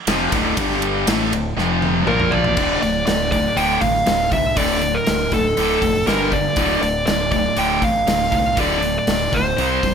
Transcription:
0.07 F1 F2 C3 F3, snare, ride
0.32 D1 D2 A2 D3, kick, ride
0.57 G1 G2 D3 G3, kick, ride
0.70 snare
0.82 ride
1.07 A1 A2 E3 A3, snare, ride
1.32 D1 D2 A2, ride
1.57 F1 F2 C3 F3, snare
1.82 high tom
2.06 A#1 A#2 F3 A#3 A#4, mid tom
2.20 mid tom
2.31 D5, floor tom
2.44 floor tom
2.56 D1 D2 A2 D3, kick, crash
2.82 D1 D2 A2 D5, open hi-hat
3.06 D1 D2 A2 D5, snare, open hi-hat
3.32 D2 A2 D5, kick, open hi-hat
3.56 D1 D2 A2 D3 G5, open hi-hat
3.81 A1 D2 A2 F5, kick, open hi-hat
4.06 D1 D2 A2, snare, open hi-hat
4.31 C2 D2 A2 E5, kick, open hi-hat
4.57 D1 D2 A2 D3 D5, kick, open hi-hat
4.82 D2 A2, open hi-hat
4.94 A#4
5.07 D1 D2 A2, snare, open hi-hat
5.32 D1 D2 A2 A4, kick, open hi-hat
5.57 D1 D2 A2 D3, open hi-hat
5.82 F1 D2 A2, kick, open hi-hat
6.07 G1 G2 D3 G3 A#4, snare, open hi-hat
6.32 G2 D3 D5, kick, open hi-hat
6.56 D1 D2 A2 D3, kick, open hi-hat
6.81 D1 D2 A2 D5, open hi-hat
7.05 D1 D2 A2 D5, snare, open hi-hat
7.31 D2 A2 D5, kick, open hi-hat
7.56 D1 D2 A2 D3 G5, open hi-hat
7.81 A1 D2 A2 F5, kick, open hi-hat
8.06 D1 D2 A2, snare, open hi-hat
8.31 C2 D2 A2 F5, kick, open hi-hat
8.55 D1 D2 A2 D3, kick, open hi-hat
8.61 D5
8.81 D2 A2, open hi-hat
8.99 D5
9.07 D1 D2 A2, snare, open hi-hat
9.32 D1 D2 A2 C5, kick, open hi-hat
9.57 C2 C3 G3 C4, open hi-hat
9.82 F1 C3 G3, kick, open hi-hat

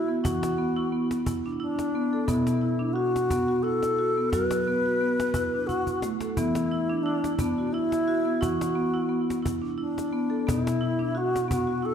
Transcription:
Already playing: E3 E4
0.08 B3
0.22 E3 E4 F#4, cajon bass
0.43 cajon slap
0.58 B3
0.76 E4
0.92 B3
1.11 cajon slap
1.26 E4, cajon bass
1.46 D4
1.60 D4 E4
1.79 cajon slap
1.95 B3
2.13 A4
2.28 B2 B3 E4, cajon bass
2.47 cajon slap
2.62 E4
2.79 D4
2.93 F#4
3.16 cajon slap
3.30 B3, cajon bass
3.48 F#4
3.63 E4 A4
3.83 cajon slap
3.99 F#4
4.18 B3
4.30 F#3 F#4 B4, cajon bass, cajon slap
4.51 cajon slap
4.68 B3
4.86 F#4
5.01 B3
5.20 cajon slap
5.34 E4, cajon bass
5.54 D4
5.67 E4 F#4, cajon bass
5.87 cajon bass
6.02 A3, cajon slap
6.21 A4, cajon slap
6.35 E3 B3 E4, cajon bass
6.55 cajon slap
6.71 E4
6.90 D4
7.03 D4 E4
7.24 cajon slap
7.39 B3 D4, cajon bass
7.58 F#4
7.73 E4
7.92 cajon slap
8.08 F#4
8.25 B3
8.41 E3 E4 F#4, cajon bass
8.61 cajon slap
8.76 B3
8.94 E4
9.09 B3
9.30 cajon slap
9.42 E4, cajon bass
9.62 D4
9.78 D4 E4
9.98 cajon slap
10.12 B3
10.30 A4
10.47 B2 B3 E4, cajon bass
10.67 cajon slap
10.81 E4
10.99 D4
11.15 F#4
11.36 cajon slap
11.48 B3 F#4, cajon bass
11.67 F#4
11.82 E4 A4

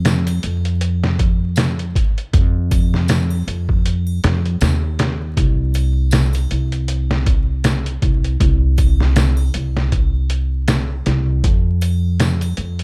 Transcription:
Already playing: F2
0.05 snare, closed hi-hat, tambourine
0.27 closed hi-hat, triangle
0.43 F2, closed hi-hat
0.65 closed hi-hat
0.81 closed hi-hat
1.04 snare
1.19 kick, closed hi-hat
1.56 snare, closed hi-hat, tambourine
1.79 closed hi-hat
1.95 kick, closed hi-hat
2.18 closed hi-hat
2.33 F2, kick, closed hi-hat
2.71 kick, closed hi-hat, triangle
2.94 snare
3.08 snare, closed hi-hat, tambourine
3.30 triangle
3.47 F2, closed hi-hat
3.69 kick
3.86 closed hi-hat
4.07 triangle
4.24 F2, snare, closed hi-hat
4.46 closed hi-hat
4.61 D#2, snare, closed hi-hat, tambourine
4.99 snare, closed hi-hat
5.37 C2, kick, closed hi-hat
5.74 closed hi-hat, triangle
6.11 snare, closed hi-hat, tambourine
6.33 closed hi-hat, triangle
6.51 C2, closed hi-hat
6.72 closed hi-hat
6.88 closed hi-hat
7.11 snare
7.26 kick, closed hi-hat
7.64 snare, closed hi-hat, tambourine
7.86 closed hi-hat
8.02 C2, kick, closed hi-hat
8.24 closed hi-hat
8.40 C2, kick, closed hi-hat
8.78 kick, closed hi-hat, triangle
9.00 snare
9.16 snare, closed hi-hat, tambourine
9.37 triangle
9.54 C2, closed hi-hat
9.77 snare
9.92 kick, closed hi-hat
10.30 closed hi-hat
10.68 snare, closed hi-hat, tambourine
11.06 C2, snare, closed hi-hat
11.44 F2, kick, closed hi-hat
11.81 closed hi-hat, triangle
12.20 snare, closed hi-hat, tambourine
12.41 closed hi-hat, triangle
12.57 F2, closed hi-hat
12.79 closed hi-hat

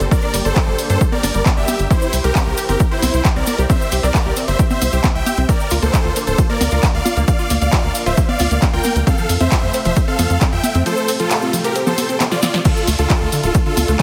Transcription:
Already playing: A#3 D4 G4, impact
0.00 G1 G3, closed hi-hat, cabasa
0.11 A#4 D5, kick, closed hi-hat, cabasa
0.22 D4, cabasa
0.34 G1 G3, open hi-hat, cabasa
0.45 G1 A4 C5, closed hi-hat, cabasa
0.56 D4, kick, clap, closed hi-hat, cabasa
0.67 G1 G3
0.79 open hi-hat, cabasa
0.90 G2 D4 A4 C5, closed hi-hat, cabasa
1.01 G3, kick, closed hi-hat, cabasa
1.12 A#4 D5, high conga
1.23 G1 D4, open hi-hat, high conga, cabasa
1.34 G1 G3, closed hi-hat, cabasa
1.46 kick, clap, closed hi-hat, high conga, cabasa
1.57 G1 D4 G4 E5
1.68 G3, open hi-hat, high conga, cabasa
1.79 G1, closed hi-hat, cabasa
1.91 C4 E4 G4 C5, kick, closed hi-hat, cabasa
2.02 C4, cabasa
2.13 C2, open hi-hat, cabasa
2.24 C2 G4 A#4, closed hi-hat, cabasa
2.35 C4, kick, clap, closed hi-hat, cabasa
2.47 C2
2.57 G4, open hi-hat, cabasa
2.69 G1 C4 G4 A#4, closed hi-hat, cabasa
2.80 kick, closed hi-hat, cabasa
2.91 E4 G4 C5
3.02 C2 C4, open hi-hat, high conga, cabasa
3.14 C2, closed hi-hat, cabasa
3.25 G4, kick, clap, closed hi-hat, cabasa
3.36 C2 C4 A#4 D5
3.47 open hi-hat, high conga, cabasa
3.58 C2 G4, closed hi-hat, cabasa
3.70 C4 C5 E5, kick, closed hi-hat, cabasa
3.82 cabasa
3.92 C2 G4, open hi-hat, cabasa
4.03 C2 C4 A#4 D5, closed hi-hat, cabasa
4.14 kick, clap, closed hi-hat, cabasa
4.26 C2 G4
4.36 C4, open hi-hat, cabasa
4.48 G1 C5 E5, closed hi-hat, cabasa
4.59 G4, kick, closed hi-hat, cabasa
4.70 C4 C5 E5, high conga, cabasa
4.82 C2, open hi-hat, high conga, cabasa
4.92 C2 G4, closed hi-hat, cabasa
5.03 C4, kick, clap, closed hi-hat, high conga, cabasa
5.15 C2 E5 G5
5.26 G4, open hi-hat, high conga, cabasa
5.37 C2 C4, closed hi-hat, cabasa
5.49 A#3 D4 F4 A#4 D5, kick, closed hi-hat, ride, cabasa
5.60 cabasa
5.70 D2 F4, open hi-hat, cabasa
5.82 D2 A#3 A4 C5, closed hi-hat, cabasa
5.94 kick, clap, closed hi-hat, ride, cabasa
6.05 D2 F4
6.16 A#3, open hi-hat, cabasa
6.27 D1 A4 C5, closed hi-hat, cabasa
6.38 F4, kick, closed hi-hat, ride, cabasa
6.50 A#3 A#4 D5
6.61 D2, open hi-hat, high conga, cabasa
6.71 D2 F4, closed hi-hat, cabasa
6.83 A#3, kick, clap, closed hi-hat, ride, cabasa
6.94 D2 D5 F5
7.05 F4, open hi-hat, high conga, cabasa
7.17 D2 A#3, closed hi-hat, cabasa
7.28 D5 F5, kick, closed hi-hat, ride, cabasa
7.39 F4, cabasa
7.50 D2 A#3, open hi-hat, cabasa
7.61 D2 D5 F5, closed hi-hat, cabasa
7.72 F4, kick, clap, closed hi-hat, ride, cabasa
7.84 D2 A#3
7.95 open hi-hat, cabasa
8.06 D1 F4 C5 E5, closed hi-hat, cabasa
8.17 A#3, kick, closed hi-hat, ride, cabasa
8.29 D5 F5, high conga
8.39 D2 F4, open hi-hat, high conga, cabasa
8.51 D2 A#3, closed hi-hat, cabasa
8.62 kick, clap, closed hi-hat, ride, high conga, cabasa
8.73 D2 F4 A#4 G5
8.84 A#3, open hi-hat, high conga, cabasa
8.96 D2, closed hi-hat, cabasa
9.07 A3 C4 A4 F5, kick, closed hi-hat, ride, cabasa
9.18 F3, cabasa
9.29 F2, open hi-hat, cabasa
9.40 F2 C4 C5 E5, closed hi-hat, cabasa
9.52 F3, kick, clap, closed hi-hat, ride, cabasa
9.63 F2
9.73 C4, open hi-hat, cabasa
9.85 F1 F3 C5 E5, closed hi-hat, cabasa
9.96 kick, closed hi-hat, ride, cabasa
10.08 C4 A4 F5
10.19 F2 F3, open hi-hat, high conga, cabasa
10.30 F2, closed hi-hat, cabasa
10.41 C4, kick, clap, closed hi-hat, ride, cabasa
10.53 F2 F3 E5 G5
10.64 open hi-hat, high conga, cabasa
10.74 F2 C4, closed hi-hat, cabasa
10.86 F3 G4 A4 C5, closed hi-hat, ride, cabasa
10.97 cabasa
11.08 C4, open hi-hat, cabasa
11.19 F3 F4 A4, closed hi-hat, cabasa
11.31 clap, closed hi-hat, ride, cabasa
11.42 C4, cabasa
11.53 F3, open hi-hat, cabasa
11.64 G4 A#4, closed hi-hat, cabasa
11.75 C4, closed hi-hat, ride, cabasa
11.87 F3 A4 C5, high conga, cabasa
11.98 open hi-hat, high conga, cabasa
12.09 C4, closed hi-hat, cabasa
12.20 F3, clap, closed hi-hat, ride, high conga, cabasa
12.31 F4 D5, snare, cabasa
12.42 C4, snare, open hi-hat, high conga, cabasa
12.54 F3, snare, closed hi-hat, cabasa
12.65 D3 D4 E4 F4 A4, kick, closed hi-hat, crash, ride, cabasa
12.77 cabasa
12.87 D2 A3, open hi-hat, cabasa
12.98 D2 D3 F4 A4, closed hi-hat, cabasa
13.10 kick, clap, closed hi-hat, ride, cabasa
13.21 D2 A3
13.32 D3, open hi-hat, cabasa
13.43 D1 F4 A4, closed hi-hat, cabasa
13.54 A3, kick, closed hi-hat, ride, cabasa
13.66 D3 F4 A4
13.77 D2, open hi-hat, high conga, cabasa
13.88 D2 A3, closed hi-hat, cabasa

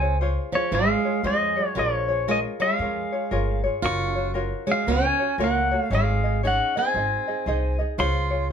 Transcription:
Already playing: C#2 C4 G#5
0.01 F4 G#4 C#5
0.21 F4 G#4 C5 C#5
0.53 F3 F4 G#4 C#5
0.71 G#1 G#3 F4 G#4 C5 C#5 F5
1.05 F4 G#4 C#5
1.23 F2 G#3 F4 G#4 C5 C#5 D#5
1.56 F4 G#4 C#5
1.75 A#1 F3 F4 G#4 A#4 C#5
2.08 F4 G#4 C#5
2.28 G#3 F4 G#4 A#4 C#5 D#5
2.60 G#3 F4 G#4 C#5 F5
2.79 F2 F4 G#4 A#4 C#5
3.12 F4 G#4 C#5
3.31 G1 F4 G#4 A#4 C#5
3.64 F4 G#4 C#5
3.82 F#1 F4 F#4 A#4 C#5 C#6
4.15 F4 F#4 C#5
4.34 F4 F#4 A#4 C#5
4.67 G#3 F4 F#4 C#5
4.72 F5
4.86 C#2 C#4 F4 F#4 A#4 C#5
4.92 G#5
5.19 F4 F#4 C#5
5.38 C#2 A#3 F4 F#4 A#4 C#5
5.44 F#5
5.71 F4 F#4 C#5
5.76 A3
5.81 F5
5.90 G#1 G#3 D#4 G#4 C#5 D#5
5.95 F5
6.24 D#4 G#4 D#5
6.43 C#4 D#4 G#4 C#5 D#5
6.47 F#5
6.76 C4 D#4 G#4 D#5 G#5
6.94 G#1 D#4 G#4 C5 D#5
7.27 D#4 G#4 D#5
7.46 C2 D#4 G#4 C5 D#5
7.79 D#4 G#4 D#5
7.98 C#2 F4 G#4 C5 C#5 C6
8.30 F4 G#4 C#5

